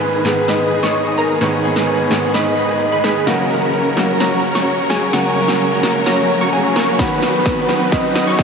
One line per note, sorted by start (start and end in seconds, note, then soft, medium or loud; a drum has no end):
0.00 0.22 G#2 medium
0.00 0.22 D#3 medium
0.00 3.23 D#3 medium
0.00 0.22 G#3 medium
0.00 0.22 B3 medium
0.00 3.24 B3 medium
0.00 0.45 D#4 medium
0.00 0.23 G#4 loud
0.00 0.45 G#4 medium
0.00 3.24 G#4 medium
0.00 0.45 B4 medium
0.00 0.50 B4 medium
0.00 0.45 B5 medium
0.00 closed hi-hat medium
0.00 riser medium
0.13 closed hi-hat soft
0.24 0.38 G#2 medium
0.24 0.38 D#3 medium
0.24 0.39 G#3 medium
0.24 0.39 B3 medium
0.24 0.39 G#4 medium
0.24 snare soft
0.24 open hi-hat loud
0.37 closed hi-hat medium
0.48 0.80 D#4 medium
0.48 0.80 G#4 medium
0.48 0.80 B4 medium
0.48 0.94 D#5 loud
0.48 0.80 B5 medium
0.48 snare soft
0.48 closed hi-hat medium
0.71 open hi-hat loud
0.83 1.15 D#4 medium
0.83 1.15 G#4 medium
0.83 1.15 C#5 medium
0.83 1.15 C#6 medium
0.83 snare soft
0.83 closed hi-hat medium
0.95 1.20 D#5 medium
0.95 closed hi-hat medium
1.06 closed hi-hat soft
1.18 1.30 D#4 medium
1.18 1.30 G#4 medium
1.18 1.30 A#4 medium
1.18 1.43 A#4 medium
1.18 1.30 A#5 loud
1.18 open hi-hat loud
1.29 closed hi-hat medium
1.41 1.63 G#2 loud
1.41 1.63 D#3 medium
1.41 1.63 G#3 medium
1.41 1.63 B3 medium
1.41 2.31 D#4 medium
1.41 2.31 G#4 medium
1.41 1.63 G#4 loud
1.41 2.36 B4 loud
1.41 2.31 C#5 medium
1.41 2.31 C#6 medium
1.41 snare medium
1.41 closed hi-hat medium
1.64 open hi-hat loud
1.76 snare soft
1.76 closed hi-hat medium
1.88 closed hi-hat medium
1.99 closed hi-hat soft
2.10 3.24 G#2 medium
2.10 3.24 D#3 medium
2.10 3.24 G#3 medium
2.10 3.25 B3 medium
2.10 3.25 G#4 medium
2.10 snare medium
2.10 open hi-hat loud
2.22 closed hi-hat medium
2.34 2.55 D#4 loud
2.34 2.55 G#4 medium
2.34 2.55 B4 loud
2.34 2.80 D#5 loud
2.34 2.55 B5 loud
2.34 snare medium
2.34 closed hi-hat medium
2.57 2.90 D#4 medium
2.57 2.89 G#4 medium
2.57 2.90 B4 medium
2.57 2.90 B5 medium
2.57 open hi-hat loud
2.69 closed hi-hat soft
2.81 3.06 D#5 medium
2.81 closed hi-hat medium
2.92 3.01 D#4 medium
2.92 3.01 G#4 medium
2.92 3.01 B4 loud
2.92 3.01 B5 loud
2.92 closed hi-hat soft
3.04 3.24 D#4 medium
3.04 3.24 G#4 medium
3.04 3.29 G#4 medium
3.04 3.24 B4 medium
3.04 3.24 B5 medium
3.04 snare medium
3.04 open hi-hat loud
3.16 closed hi-hat medium
3.26 3.94 C#3 medium
3.26 3.94 F#3 medium
3.26 8.43 F#3 medium
3.26 3.94 A#3 medium
3.26 4.17 C#4 medium
3.26 6.96 C#4 medium
3.26 4.17 F#4 medium
3.26 3.95 F#4 loud
3.26 4.17 A#4 medium
3.26 4.20 A#4 loud
3.26 6.96 A#4 medium
3.26 4.17 A#5 medium
3.26 snare medium
3.26 closed hi-hat medium
3.50 open hi-hat loud
3.62 closed hi-hat medium
3.74 closed hi-hat medium
3.85 closed hi-hat soft
3.96 4.10 C#3 medium
3.96 4.11 F#3 medium
3.96 4.11 A#3 medium
3.96 4.11 F#4 medium
3.96 snare medium
3.96 open hi-hat loud
4.09 closed hi-hat medium
4.20 4.52 C#4 medium
4.20 4.52 F#4 medium
4.20 4.52 A#4 medium
4.20 4.64 C#5 loud
4.20 4.52 A#5 medium
4.20 snare medium
4.20 closed hi-hat medium
4.43 open hi-hat loud
4.55 4.87 C#4 medium
4.55 4.87 F#4 medium
4.55 4.87 C#5 medium
4.55 4.87 C#6 medium
4.55 snare medium
4.55 closed hi-hat soft
4.67 4.92 C#5 medium
4.67 closed hi-hat medium
4.78 closed hi-hat soft
4.90 5.02 C#4 medium
4.90 5.02 F#4 medium
4.90 5.02 G#4 medium
4.90 5.13 G#4 medium
4.90 5.02 G#5 loud
4.90 snare medium
4.90 open hi-hat loud
5.02 closed hi-hat soft
5.13 5.35 C#3 loud
5.13 5.35 F#3 medium
5.13 5.35 A#3 medium
5.13 6.04 C#4 medium
5.13 6.04 F#4 medium
5.13 5.35 F#4 loud
5.13 6.08 A#4 loud
5.13 6.04 C#5 medium
5.13 6.03 C#6 medium
5.13 snare medium
5.13 closed hi-hat medium
5.36 open hi-hat loud
5.48 snare medium
5.48 closed hi-hat medium
5.60 closed hi-hat medium
5.71 closed hi-hat soft
5.82 6.96 C#3 medium
5.82 6.96 F#3 medium
5.82 6.97 A#3 medium
5.82 6.97 F#4 medium
5.82 snare medium
5.82 open hi-hat loud
5.95 closed hi-hat soft
6.06 6.27 C#4 loud
6.06 6.27 F#4 medium
6.06 6.27 A#4 loud
6.06 6.52 C#5 loud
6.06 6.27 A#5 loud
6.06 snare medium
6.06 closed hi-hat medium
6.29 open hi-hat loud
6.41 6.50 C#4 medium
6.41 6.50 F#4 medium
6.41 6.50 C#5 loud
6.41 6.50 C#6 loud
6.41 closed hi-hat soft
6.53 6.73 C#4 medium
6.53 6.73 F#4 medium
6.53 6.73 G#4 medium
6.53 6.74 C#5 loud
6.53 6.73 G#5 medium
6.53 closed hi-hat medium
6.64 closed hi-hat soft
6.76 6.97 C#4 medium
6.76 6.97 F#4 medium
6.76 6.98 A#4 medium
6.76 6.97 C#5 medium
6.76 6.96 C#6 medium
6.76 snare medium
6.76 open hi-hat loud
6.88 closed hi-hat soft
6.98 7.66 D#3 medium
6.98 7.66 F#3 medium
6.98 7.66 B3 medium
6.98 8.43 D#4 medium
6.98 7.67 F#4 loud
6.98 8.43 B4 medium
6.98 7.94 B4 loud
6.98 7.90 B5 medium
6.98 kick loud
6.98 snare medium
6.98 closed hi-hat medium
6.98 cabasa medium
7.12 cabasa soft
7.22 snare medium
7.22 open hi-hat loud
7.34 closed hi-hat medium
7.34 cabasa medium
7.46 kick loud
7.46 snare medium
7.46 closed hi-hat medium
7.46 cabasa medium
7.57 closed hi-hat soft
7.57 cabasa soft
7.68 7.82 D#3 medium
7.68 7.83 F#3 medium
7.68 7.83 B3 medium
7.68 7.83 F#4 medium
7.68 snare medium
7.68 open hi-hat loud
7.80 closed hi-hat medium
7.80 cabasa medium
7.92 8.24 D#4 medium
7.92 8.24 F#4 medium
7.92 8.24 B4 medium
7.92 8.38 D#5 loud
7.92 8.24 B5 medium
7.92 kick loud
7.92 snare medium
7.92 closed hi-hat medium
7.92 cabasa medium
8.05 cabasa soft
8.15 snare medium
8.15 open hi-hat loud
8.27 8.43 D#4 medium
8.27 8.43 F#4 medium
8.27 8.43 C#5 medium
8.27 8.43 C#6 medium
8.27 closed hi-hat soft
8.27 cabasa medium
8.39 8.43 D#5 loud
8.39 kick loud
8.39 snare medium
8.39 closed hi-hat medium
8.39 cabasa medium